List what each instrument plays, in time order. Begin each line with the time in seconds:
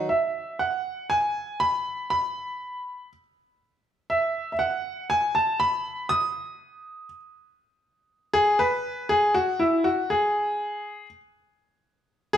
Already playing: steel-string acoustic guitar F#4
0.09 upright piano E5
0.59 upright piano F#5
1.10 upright piano G#5
1.60 upright piano B5
2.10 upright piano B5
4.10 upright piano E5
4.52 upright piano E5
4.59 upright piano F#5
5.10 upright piano G#5
5.35 upright piano A5
5.60 upright piano B5
6.09 upright piano D#6
8.34 upright piano G#4
8.59 upright piano B4
9.09 upright piano G#4
9.34 upright piano F#4
9.59 upright piano E4
9.84 upright piano F#4
10.10 upright piano G#4
12.33 upright piano G#4